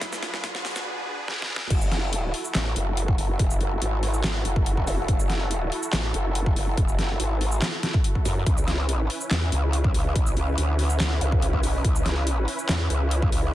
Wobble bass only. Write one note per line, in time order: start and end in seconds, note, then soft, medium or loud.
1.70 2.32 F#1 loud
2.55 2.74 A1 loud
2.76 3.17 F#1 loud
3.18 3.38 F#1 loud
3.39 3.59 E1 loud
3.61 3.80 F#1 loud
3.82 4.22 G#1 loud
4.24 4.44 G#1 loud
4.45 4.86 F#1 loud
4.87 5.07 E1 loud
5.08 5.70 F#1 loud
5.93 6.13 A1 loud
6.14 6.55 F#1 loud
6.56 6.76 F#1 loud
6.77 6.97 E1 loud
6.99 7.18 F#1 loud
7.20 7.60 G#1 loud
8.25 8.45 F#2 medium
8.46 9.08 C#2 loud
9.31 9.51 E2 loud
9.52 9.93 C#2 loud
9.94 10.14 C#2 loud
10.15 10.35 B1 loud
10.37 10.56 C#2 loud
10.58 10.98 D2 loud
11.00 11.20 D2 loud
11.21 11.62 C#2 loud
11.63 11.83 B1 loud
11.85 12.46 C#2 loud
12.69 12.89 E2 loud
12.90 13.31 C#2 loud
13.32 13.52 C#2 loud